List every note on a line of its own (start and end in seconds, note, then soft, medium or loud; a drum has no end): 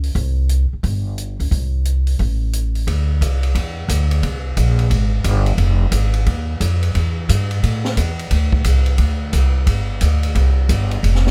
0.00 0.11 C#2 medium
0.00 open hi-hat soft
0.15 0.67 C2 medium
0.15 kick soft
0.15 open hi-hat soft
0.49 closed hi-hat medium
0.73 muted upright bass stroke soft
0.83 1.36 G1 medium
0.83 kick soft
0.83 open hi-hat soft
1.18 closed hi-hat soft
1.40 1.51 C#2 medium
1.40 open hi-hat soft
1.51 2.16 C2 medium
1.51 kick soft
1.51 open hi-hat soft
1.85 closed hi-hat medium
2.07 open hi-hat soft
2.19 2.84 A1 medium
2.19 kick soft
2.19 open hi-hat soft
2.53 closed hi-hat soft
2.75 open hi-hat soft
2.87 3.20 D2 medium
2.87 kick soft
2.87 ride medium
3.21 3.54 C2 medium
3.21 kick soft
3.21 hi-hat pedal medium
3.21 ride medium
3.43 ride soft
3.55 3.88 E2 medium
3.55 kick soft
3.55 ride medium
3.88 4.22 D2 medium
3.88 kick soft
3.88 hi-hat pedal medium
3.88 ride medium
4.11 ride soft
4.23 4.56 C2 medium
4.23 kick soft
4.23 ride medium
4.57 4.89 A#1 medium
4.57 kick soft
4.57 hi-hat pedal medium
4.57 ride medium
4.79 ride soft
4.90 5.24 G#1 medium
4.90 kick soft
4.90 ride medium
5.24 5.57 G1 medium
5.24 kick soft
5.24 hi-hat pedal medium
5.24 ride medium
5.46 ride soft
5.58 5.91 F1 medium
5.58 kick soft
5.58 ride medium
5.92 6.25 G#1 medium
5.92 kick soft
5.92 hi-hat pedal medium
5.92 ride medium
6.14 ride soft
6.26 6.60 D#2 medium
6.26 kick soft
6.26 ride medium
6.60 6.94 F2 medium
6.60 kick soft
6.60 hi-hat pedal medium
6.60 ride medium
6.83 ride soft
6.95 7.28 E2 medium
6.95 kick soft
6.95 ride medium
7.29 7.62 G2 medium
7.29 kick soft
7.29 hi-hat pedal medium
7.29 ride medium
7.51 ride soft
7.63 7.96 A2 medium
7.63 kick soft
7.63 ride medium
7.85 snare soft
7.97 8.30 E2 medium
7.97 kick soft
7.97 hi-hat pedal medium
7.97 ride medium
8.19 ride soft
8.31 8.64 D2 medium
8.31 kick soft
8.31 ride medium
8.52 kick medium
8.64 8.98 C2 medium
8.64 kick soft
8.64 hi-hat pedal medium
8.64 ride medium
8.86 ride soft
8.98 9.32 D2 medium
8.98 kick soft
8.98 ride medium
9.33 9.66 C2 medium
9.33 kick soft
9.33 hi-hat pedal soft
9.33 ride medium
9.67 10.00 G1 medium
9.67 kick soft
9.67 ride medium
10.01 10.34 D2 medium
10.01 kick soft
10.01 hi-hat pedal medium
10.01 ride medium
10.23 ride soft
10.35 10.68 C2 medium
10.35 kick soft
10.35 ride medium
10.69 11.02 G1 medium
10.69 kick soft
10.69 hi-hat pedal medium
10.69 ride medium
10.91 ride soft
11.03 11.31 F1 medium
11.03 kick soft
11.03 ride medium
11.15 snare soft
11.27 snare soft